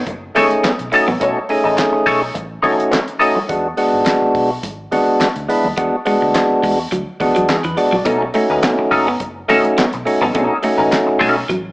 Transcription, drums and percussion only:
0.07 kick, closed hi-hat, muted conga
0.36 open hi-hat, muted conga, low conga
0.51 closed hi-hat
0.63 snare, clap, closed hi-hat, high conga
0.79 closed hi-hat
0.92 open hi-hat
1.08 high conga
1.21 kick, closed hi-hat, muted conga
1.49 open hi-hat
1.78 snare, clap, closed hi-hat, high conga
2.07 kick, open hi-hat, muted conga
2.35 kick, closed hi-hat, muted conga
2.64 kick, open hi-hat, muted conga, low conga
2.80 closed hi-hat
2.93 snare, clap, closed hi-hat, high conga
3.08 closed hi-hat
3.21 open hi-hat
3.36 high conga
3.49 kick, closed hi-hat, muted conga
3.77 open hi-hat
4.06 snare, clap, closed hi-hat, high conga
4.35 kick, open hi-hat, muted conga
4.63 kick, closed hi-hat, muted conga
4.92 open hi-hat, muted conga, low conga
5.20 snare, clap, closed hi-hat, high conga
5.36 closed hi-hat
5.50 open hi-hat
5.64 high conga
5.77 kick, closed hi-hat, muted conga
6.06 open hi-hat
6.35 snare, clap, closed hi-hat, high conga
6.63 kick, open hi-hat
6.92 kick, closed hi-hat, muted conga
7.20 kick, open hi-hat, muted conga, low conga
7.36 closed hi-hat
7.49 snare, clap, closed hi-hat, high conga
7.64 closed hi-hat
7.77 open hi-hat
7.93 high conga
8.05 kick, closed hi-hat, muted conga
8.34 open hi-hat
8.63 snare, clap, closed hi-hat, high conga
8.92 kick, open hi-hat, muted conga
9.20 kick, closed hi-hat, muted conga
9.49 open hi-hat, muted conga, low conga
9.65 closed hi-hat
9.78 snare, clap, closed hi-hat, high conga
9.93 closed hi-hat
10.07 open hi-hat
10.22 high conga
10.35 kick, closed hi-hat, muted conga
10.63 open hi-hat
10.92 snare, clap, closed hi-hat, high conga
11.21 kick, open hi-hat, muted conga
11.50 kick, closed hi-hat, muted conga

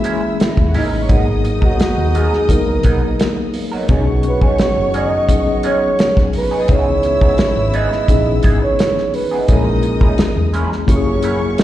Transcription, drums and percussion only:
0.04 closed hi-hat
0.40 snare, closed hi-hat
0.57 kick
0.74 open hi-hat
1.09 kick, closed hi-hat
1.45 closed hi-hat
1.62 kick
1.80 snare, closed hi-hat
2.15 closed hi-hat
2.33 snare
2.49 kick, closed hi-hat
2.83 kick, closed hi-hat
3.20 snare, closed hi-hat
3.54 open hi-hat
3.89 kick, closed hi-hat
4.23 closed hi-hat
4.42 kick
4.58 snare, closed hi-hat
4.94 closed hi-hat
5.29 kick, closed hi-hat
5.63 closed hi-hat
5.99 snare, closed hi-hat
6.17 kick, snare
6.33 open hi-hat
6.68 kick, closed hi-hat
7.03 closed hi-hat
7.21 kick
7.38 snare, closed hi-hat
7.74 closed hi-hat
7.92 snare
8.08 kick, closed hi-hat
8.43 kick, closed hi-hat
8.79 snare, closed hi-hat
8.98 snare
9.14 open hi-hat
9.48 kick, closed hi-hat
9.83 closed hi-hat
10.01 kick
10.18 snare, closed hi-hat
10.54 closed hi-hat
10.72 snare
10.88 kick, closed hi-hat
11.22 closed hi-hat
11.58 snare, closed hi-hat

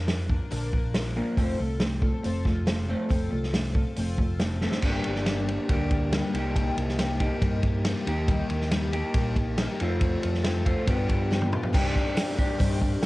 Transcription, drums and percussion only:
0.08 snare, open hi-hat
0.30 kick
0.51 open hi-hat
0.73 kick
0.94 snare, open hi-hat
1.37 kick, open hi-hat
1.80 snare, open hi-hat
2.02 kick
2.24 open hi-hat
2.45 kick, snare
2.67 snare, open hi-hat
3.10 kick, open hi-hat
3.43 snare
3.54 snare, open hi-hat
3.75 kick
3.96 open hi-hat
4.18 kick
4.40 snare, open hi-hat
4.61 snare
4.72 snare
4.82 kick, crash
5.04 ride
5.15 snare
5.26 snare, ride
5.48 ride
5.69 kick, ride
5.91 kick, ride
6.13 snare, ride
6.35 ride
6.56 kick, ride
6.78 ride
6.89 snare
6.99 snare, ride
7.20 kick, ride
7.42 kick, ride
7.63 kick, ride
7.85 snare, ride
8.07 ride
8.28 kick, ride
8.50 ride
8.61 snare
8.71 snare, ride
8.93 ride
9.14 kick, ride
9.36 kick, ride
9.58 snare, ride
9.80 ride
10.01 kick, ride
10.23 ride
10.34 snare
10.44 snare, ride
10.66 kick, ride
10.87 kick, ride
11.09 kick, ride
11.32 snare
11.42 high tom
11.53 mid tom
11.63 floor tom
11.74 kick, crash, tambourine
11.86 tambourine
11.96 kick, snare, tambourine
12.07 tambourine
12.17 snare, open hi-hat, tambourine
12.39 kick, tambourine
12.60 kick, open hi-hat, tambourine
12.71 tambourine
12.82 kick, tambourine
12.93 tambourine
13.03 snare, open hi-hat

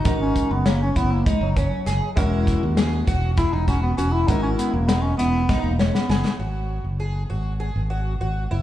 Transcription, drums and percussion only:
0.05 kick, closed hi-hat
0.36 kick, closed hi-hat
0.66 snare, closed hi-hat
0.96 kick, closed hi-hat
1.26 kick, closed hi-hat
1.57 kick, closed hi-hat
1.87 snare, closed hi-hat
2.17 kick, closed hi-hat
2.47 kick, snare, closed hi-hat
2.77 snare, closed hi-hat
3.07 kick, closed hi-hat
3.37 kick, closed hi-hat
3.68 kick, snare, closed hi-hat
3.98 closed hi-hat
4.28 kick, closed hi-hat
4.59 closed hi-hat
4.89 snare, closed hi-hat
5.19 closed hi-hat
5.49 kick, snare
5.79 snare
5.95 snare
6.10 snare
6.25 snare

